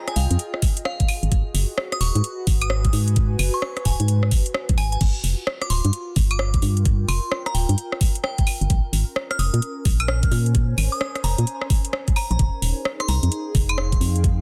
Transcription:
Already playing: ambient pad F4 G#4 D#5 G5
0.08 synth bell G#5, cross-stick, closed hi-hat
0.16 fm bass C2, synth bell F5, open hi-hat
0.31 fm bass F2, closed hi-hat
0.39 closed hi-hat
0.54 cross-stick
0.62 kick, open hi-hat
0.77 closed hi-hat
0.85 synth bell F5, cross-stick
1.00 kick, closed hi-hat
1.08 ambient pad F#4, open hi-hat, claves
1.23 fm bass G#1, closed hi-hat
1.32 fm bass G#1, kick, closed hi-hat
1.54 fm bass F#1, ambient pad B4, open hi-hat
1.78 cross-stick
1.92 synth bell D#6, cross-stick, closed hi-hat
2.01 fm bass D#1, synth bell C#6, open hi-hat
2.15 fm bass G#2, closed hi-hat
2.24 ambient pad G#5, closed hi-hat
2.47 fm bass G#1, kick, open hi-hat
2.61 synth bell D#6, closed hi-hat, claves
2.70 cross-stick
2.85 kick, closed hi-hat
2.93 fm bass G#2, open hi-hat
3.08 closed hi-hat
3.16 kick, closed hi-hat
3.39 fm bass F#1, open hi-hat, claves
3.54 synth bell C#6
3.62 cross-stick
3.77 cross-stick, closed hi-hat
3.85 fm bass D#1, synth bell G#5, kick, open hi-hat
4.00 fm bass G#2, closed hi-hat
4.08 closed hi-hat
4.23 cross-stick
4.31 fm bass F#1, kick, open hi-hat
4.46 closed hi-hat
4.54 cross-stick
4.69 fm bass B1, kick, closed hi-hat
4.78 fm bass G#1, synth bell G#5, open hi-hat, claves
4.92 synth bell G#5, closed hi-hat
5.01 fm bass G1, ambient pad F4, kick, closed hi-hat, crash
5.24 fm bass F1, open hi-hat
5.47 cross-stick
5.62 synth bell D6, cross-stick, closed hi-hat
5.67 fm bass D1, ambient pad A#4, synth bell C6, open hi-hat
5.85 fm bass G2, closed hi-hat
5.93 closed hi-hat
6.16 fm bass G1, kick, open hi-hat
6.21 ambient pad G5
6.31 synth bell D6, closed hi-hat, claves
6.39 cross-stick
6.54 kick, closed hi-hat
6.62 fm bass G2, open hi-hat
6.77 closed hi-hat
6.85 kick, closed hi-hat
7.08 fm bass F1, synth bell C6, open hi-hat, claves
7.32 cross-stick
7.46 synth bell A#5, cross-stick, closed hi-hat
7.54 fm bass D1, synth bell G5, open hi-hat
7.69 fm bass G2, closed hi-hat
7.78 closed hi-hat
7.92 cross-stick
8.01 kick, open hi-hat
8.15 closed hi-hat
8.24 synth bell G5, cross-stick
8.38 kick, closed hi-hat
8.47 open hi-hat, claves
8.61 fm bass G1, closed hi-hat
8.70 fm bass A#1, ambient pad C#4, kick, closed hi-hat
8.93 fm bass G#1, open hi-hat
9.16 cross-stick
9.31 synth bell F6, cross-stick, closed hi-hat
9.39 fm bass F1, synth bell D#6, open hi-hat
9.54 fm bass A#2, ambient pad G#5, closed hi-hat
9.62 ambient pad C5, closed hi-hat
9.85 fm bass A#1, kick, open hi-hat
10.00 synth bell F6, closed hi-hat, claves
10.08 cross-stick
10.23 kick, closed hi-hat
10.31 fm bass A#2, open hi-hat
10.46 closed hi-hat
10.55 kick, closed hi-hat
10.78 fm bass G#1, open hi-hat, claves
10.92 synth bell D#6
11.01 cross-stick
11.15 cross-stick, closed hi-hat
11.24 fm bass F1, synth bell A#5, open hi-hat
11.38 fm bass A#2, closed hi-hat
11.47 closed hi-hat
11.62 cross-stick
11.70 kick, open hi-hat
11.85 closed hi-hat
11.93 cross-stick
12.08 kick, closed hi-hat
12.16 synth bell A#5, open hi-hat, claves
12.31 fm bass A#1, synth bell A#5, closed hi-hat
12.39 fm bass F1, ambient pad D#4, kick, closed hi-hat
12.49 ambient pad G#4
12.62 fm bass D#1, open hi-hat
12.85 cross-stick
13.00 synth bell C6, cross-stick, closed hi-hat
13.08 fm bass C2, synth bell A#5, open hi-hat
13.17 ambient pad G5
13.23 fm bass F2, ambient pad F5, closed hi-hat
13.32 closed hi-hat
13.55 fm bass F1, kick, open hi-hat
13.69 synth bell C6, closed hi-hat, claves
13.78 cross-stick
13.92 kick, closed hi-hat
14.01 fm bass F2, open hi-hat
14.16 closed hi-hat
14.24 kick, closed hi-hat

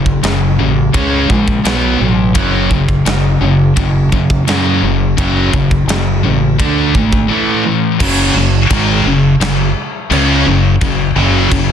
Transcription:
Already playing: fingered electric bass F#1, distorted electric guitar F#2 C#3
0.06 kick
0.23 fingered electric bass F#1, distorted electric guitar F#2 C#3, snare, ride bell
0.59 fingered electric bass A1, distorted electric guitar F#2 C#3
0.93 fingered electric bass C#2, distorted electric guitar C#3 G#3 C#4, kick, ride bell
1.29 fingered electric bass A#1, distorted electric guitar C#3 G#3, kick
1.48 kick
1.65 fingered electric bass B1, distorted electric guitar B2 F#3 B3, snare, ride bell
2.00 fingered electric bass A1, distorted electric guitar B2 F#3
2.35 fingered electric bass F#1, distorted electric guitar F#2 C#3 F#3, kick, ride bell
2.71 distorted electric guitar F#2 C#3, kick
2.89 kick
3.05 fingered electric bass F#1, distorted electric guitar F#2 C#3, snare, ride bell
3.41 fingered electric bass F#1, distorted electric guitar F#2 C#3
3.76 fingered electric bass F#1, distorted electric guitar F#2 C#3, kick, ride bell
4.12 fingered electric bass F#2, distorted electric guitar F#2 C#3, kick
4.30 kick
4.47 fingered electric bass F#2, distorted electric guitar F#2 C#3 F#3, snare, ride bell
4.82 fingered electric bass F#1, distorted electric guitar F#2 C#3
5.17 fingered electric bass F#1, distorted electric guitar F#2 C#3 F#3, kick, ride bell
5.53 fingered electric bass F#1, distorted electric guitar F#2 C#3, kick
5.71 kick
5.87 fingered electric bass F#1, distorted electric guitar F#2 C#3, snare, ride bell
6.23 fingered electric bass A1, distorted electric guitar F#2 C#3
6.59 fingered electric bass D2, distorted electric guitar D3 A3 D4, kick, ride bell
6.94 fingered electric bass G#1, distorted electric guitar D3 A3, kick
7.13 kick
7.28 distorted electric guitar A2 E3 A3
7.64 distorted electric guitar A2 E3
8.00 fingered electric bass F#1, distorted electric guitar F#2 C#3 F#3, kick, crash, china
8.34 fingered electric bass F#1, distorted electric guitar F#2 C#3
8.70 fingered electric bass G#1, distorted electric guitar G#2 D#3 G#3, kick, china
9.05 fingered electric bass F#1, distorted electric guitar F#2 C#3
9.40 fingered electric bass F#1, distorted electric guitar F#2 C#3, snare, china
10.10 fingered electric bass C#2, distorted electric guitar C#3 G#3 C#4, china
10.46 fingered electric bass F#1, distorted electric guitar F#2 C#3
10.81 fingered electric bass F#1, distorted electric guitar F#2 C#3, kick, china
11.16 fingered electric bass F#1, distorted electric guitar F#2 C#3 F#3
11.51 fingered electric bass F#1, distorted electric guitar F#2 C#3, kick, china

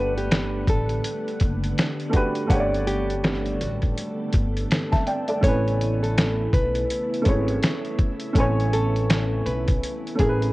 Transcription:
Already playing: upright bass G1, string machine D3 G3 A3 B3 F#5, upright piano A3 D4 G4 B4 F#5, nylon-string guitar B4
0.18 nylon-string guitar G4, closed hi-hat
0.31 finger snap, snare, closed hi-hat
0.67 upright bass A1, nylon-string guitar A4, kick, closed hi-hat
0.89 closed hi-hat
1.04 closed hi-hat
1.28 closed hi-hat
1.40 upright bass F#1, kick, closed hi-hat
1.63 closed hi-hat
1.78 finger snap, snare, closed hi-hat
2.00 closed hi-hat
2.10 upright piano A3 D4 F#4, closed hi-hat
2.14 upright piano G4 B4, kick
2.35 closed hi-hat
2.47 upright bass G1, upright piano A3 D4 F#5, kick, closed hi-hat
2.52 upright piano G4 C#5
2.60 upright piano D5
2.75 closed hi-hat
2.87 nylon-string guitar G4, closed hi-hat
3.10 closed hi-hat
3.24 finger snap, snare, closed hi-hat
3.46 closed hi-hat
3.61 upright bass A1, nylon-string guitar F#4, closed hi-hat
3.82 kick, closed hi-hat
3.97 closed hi-hat
4.33 upright bass G1, kick, closed hi-hat
4.57 closed hi-hat
4.71 finger snap, snare, closed hi-hat
4.92 upright piano E5 A5, kick, snare, closed hi-hat
5.07 upright piano D5 G5, closed hi-hat
5.28 upright piano A4 D5, closed hi-hat
5.41 upright bass A1, string machine C#3 E3 E4, upright piano A3 C#4 E4, nylon-string guitar C#5, kick, closed hi-hat
5.46 upright piano B4 G#5
5.68 closed hi-hat
5.81 closed hi-hat
6.03 nylon-string guitar A4, closed hi-hat
6.18 finger snap, snare, closed hi-hat
6.53 upright bass B1, nylon-string guitar B4, kick, closed hi-hat
6.75 closed hi-hat
6.90 closed hi-hat
7.14 closed hi-hat
7.22 upright piano A3 C#4 E4, closed hi-hat
7.26 upright bass G#1, upright piano G#4 C#5, kick
7.48 closed hi-hat
7.63 finger snap, snare, closed hi-hat
7.85 closed hi-hat
7.99 kick, closed hi-hat
8.20 closed hi-hat
8.33 upright bass A1, upright piano A3 C#4 E4, kick, closed hi-hat
8.38 upright piano C#5 G#5
8.60 closed hi-hat
8.73 nylon-string guitar A4, closed hi-hat
8.96 closed hi-hat
9.10 finger snap, snare, closed hi-hat
9.46 upright bass B1, nylon-string guitar B4, closed hi-hat
9.68 kick, closed hi-hat
9.84 closed hi-hat
10.07 closed hi-hat
10.15 upright piano A3 C#4 E4, closed hi-hat
10.19 upright bass A1, nylon-string guitar G#4, upright piano G#4 A#4, kick
10.29 upright piano B4
10.42 closed hi-hat

